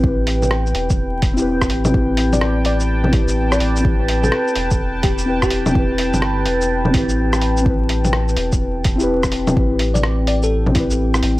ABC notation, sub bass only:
X:1
M:4/4
L:1/16
Q:"Swing 16ths" 1/4=126
K:Am
V:1 name="Sub bass" clef=bass
A,,,6 E,,, E,,,6- E,,, A,,,2 | A,,,8- A,,,3 A,,,3 A,,,2- | A,,,4 z2 E,,,2 E,,,8- | E,,,3 G,,,3 E,,,4 A,,,6- |
A,,,6 E,,, E,,,8- E,,, | A,,,8- A,,,3 A,,,3 A,,,2 |]